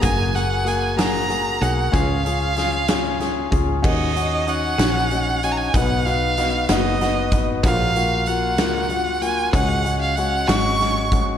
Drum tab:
CC |------|------|x-----|------|
HH |xxxxxx|xxxxxx|-xxxxx|xxxxxx|
SD |---o--|--ooo-|---o--|--ooo-|
BD |o-----|o----o|o-----|o----o|

CC |------|------|
HH |xxxxxx|xxxxxx|
SD |---o--|---oo-|
BD |o-----|o----o|